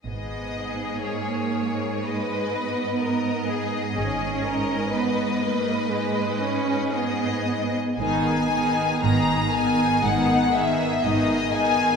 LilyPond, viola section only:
\new Staff \with { instrumentName = "Viola section" } { \time 4/4 \key gis \minor \tempo 4 = 60 b4 ais4 gis8 b4. | cis'4 b8 ais8 gis8 cis'8 b4 | <dis b>8 <dis b>8 <dis b>8 <dis b>8 <dis b>8 <dis b>8 <dis b>8 <dis b>8 | }